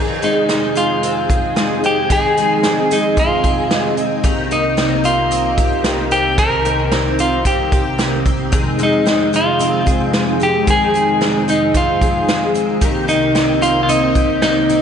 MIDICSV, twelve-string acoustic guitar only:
0, 0, Header, 1, 2, 480
1, 0, Start_track
1, 0, Key_signature, -4, "minor"
1, 0, Tempo, 535714
1, 1880, Time_signature, 4, 2, 24, 8
1, 13278, End_track
2, 0, Start_track
2, 0, Title_t, "Twelve-string acoustic guitar"
2, 0, Program_c, 0, 25
2, 0, Note_on_c, 0, 51, 68
2, 0, Note_on_c, 0, 60, 52
2, 0, Note_on_c, 0, 68, 60
2, 199, Note_on_c, 0, 56, 58
2, 433, Note_off_c, 0, 60, 0
2, 436, Note_on_c, 0, 60, 54
2, 664, Note_off_c, 0, 56, 0
2, 675, Note_on_c, 0, 56, 55
2, 919, Note_off_c, 0, 60, 0
2, 923, Note_on_c, 0, 60, 55
2, 1154, Note_off_c, 0, 68, 0
2, 1165, Note_on_c, 0, 68, 53
2, 1388, Note_off_c, 0, 56, 0
2, 1398, Note_on_c, 0, 56, 60
2, 1641, Note_off_c, 0, 60, 0
2, 1645, Note_on_c, 0, 60, 53
2, 1876, Note_off_c, 0, 68, 0
2, 1879, Note_off_c, 0, 51, 0
2, 1883, Note_on_c, 0, 51, 73
2, 1887, Note_on_c, 0, 68, 60
2, 2115, Note_off_c, 0, 56, 0
2, 2126, Note_on_c, 0, 56, 60
2, 2363, Note_off_c, 0, 60, 0
2, 2366, Note_on_c, 0, 60, 53
2, 2594, Note_off_c, 0, 56, 0
2, 2604, Note_on_c, 0, 56, 58
2, 2835, Note_off_c, 0, 60, 0
2, 2838, Note_on_c, 0, 60, 57
2, 3069, Note_off_c, 0, 68, 0
2, 3080, Note_on_c, 0, 68, 60
2, 3310, Note_off_c, 0, 56, 0
2, 3321, Note_on_c, 0, 56, 57
2, 3555, Note_off_c, 0, 60, 0
2, 3559, Note_on_c, 0, 60, 54
2, 3791, Note_off_c, 0, 51, 0
2, 3795, Note_on_c, 0, 51, 76
2, 3799, Note_off_c, 0, 68, 0
2, 3802, Note_on_c, 0, 67, 59
2, 3848, Note_off_c, 0, 56, 0
2, 4040, Note_on_c, 0, 58, 61
2, 4067, Note_off_c, 0, 60, 0
2, 4274, Note_on_c, 0, 60, 59
2, 4503, Note_off_c, 0, 58, 0
2, 4514, Note_on_c, 0, 58, 51
2, 4753, Note_off_c, 0, 60, 0
2, 4757, Note_on_c, 0, 60, 56
2, 4987, Note_off_c, 0, 67, 0
2, 4998, Note_on_c, 0, 67, 61
2, 5223, Note_off_c, 0, 58, 0
2, 5234, Note_on_c, 0, 58, 56
2, 5472, Note_off_c, 0, 60, 0
2, 5476, Note_on_c, 0, 60, 55
2, 5710, Note_off_c, 0, 67, 0
2, 5714, Note_off_c, 0, 51, 0
2, 5717, Note_on_c, 0, 51, 71
2, 5721, Note_on_c, 0, 67, 59
2, 5947, Note_off_c, 0, 58, 0
2, 5958, Note_on_c, 0, 58, 56
2, 6193, Note_off_c, 0, 60, 0
2, 6196, Note_on_c, 0, 60, 58
2, 6427, Note_off_c, 0, 58, 0
2, 6438, Note_on_c, 0, 58, 48
2, 6672, Note_off_c, 0, 60, 0
2, 6675, Note_on_c, 0, 60, 60
2, 6907, Note_off_c, 0, 67, 0
2, 6918, Note_on_c, 0, 67, 55
2, 7143, Note_off_c, 0, 58, 0
2, 7154, Note_on_c, 0, 58, 53
2, 7393, Note_off_c, 0, 60, 0
2, 7396, Note_on_c, 0, 60, 58
2, 7629, Note_off_c, 0, 51, 0
2, 7633, Note_on_c, 0, 51, 72
2, 7634, Note_off_c, 0, 67, 0
2, 7638, Note_on_c, 0, 68, 58
2, 7685, Note_off_c, 0, 58, 0
2, 7874, Note_on_c, 0, 56, 62
2, 8111, Note_off_c, 0, 60, 0
2, 8115, Note_on_c, 0, 60, 50
2, 8347, Note_off_c, 0, 56, 0
2, 8358, Note_on_c, 0, 56, 52
2, 8593, Note_off_c, 0, 60, 0
2, 8596, Note_on_c, 0, 60, 54
2, 8827, Note_off_c, 0, 68, 0
2, 8838, Note_on_c, 0, 68, 58
2, 9069, Note_off_c, 0, 56, 0
2, 9080, Note_on_c, 0, 56, 56
2, 9312, Note_off_c, 0, 60, 0
2, 9316, Note_on_c, 0, 60, 54
2, 9556, Note_off_c, 0, 68, 0
2, 9558, Note_off_c, 0, 51, 0
2, 9561, Note_on_c, 0, 51, 71
2, 9566, Note_on_c, 0, 68, 62
2, 9790, Note_off_c, 0, 56, 0
2, 9800, Note_on_c, 0, 56, 57
2, 10039, Note_off_c, 0, 60, 0
2, 10042, Note_on_c, 0, 60, 54
2, 10273, Note_off_c, 0, 56, 0
2, 10284, Note_on_c, 0, 56, 56
2, 10519, Note_off_c, 0, 60, 0
2, 10523, Note_on_c, 0, 60, 56
2, 10756, Note_off_c, 0, 68, 0
2, 10767, Note_on_c, 0, 68, 61
2, 10996, Note_off_c, 0, 56, 0
2, 11006, Note_on_c, 0, 56, 60
2, 11237, Note_off_c, 0, 60, 0
2, 11240, Note_on_c, 0, 60, 51
2, 11476, Note_off_c, 0, 51, 0
2, 11480, Note_on_c, 0, 51, 75
2, 11481, Note_off_c, 0, 68, 0
2, 11484, Note_on_c, 0, 67, 58
2, 11531, Note_off_c, 0, 56, 0
2, 11720, Note_on_c, 0, 58, 62
2, 11747, Note_off_c, 0, 60, 0
2, 11960, Note_on_c, 0, 60, 59
2, 12190, Note_off_c, 0, 58, 0
2, 12200, Note_on_c, 0, 58, 52
2, 12439, Note_off_c, 0, 60, 0
2, 12442, Note_on_c, 0, 60, 66
2, 12669, Note_off_c, 0, 67, 0
2, 12680, Note_on_c, 0, 67, 61
2, 12912, Note_off_c, 0, 58, 0
2, 12922, Note_on_c, 0, 58, 57
2, 13165, Note_off_c, 0, 60, 0
2, 13168, Note_on_c, 0, 60, 60
2, 13278, Note_off_c, 0, 51, 0
2, 13278, Note_off_c, 0, 58, 0
2, 13278, Note_off_c, 0, 60, 0
2, 13278, Note_off_c, 0, 67, 0
2, 13278, End_track
0, 0, End_of_file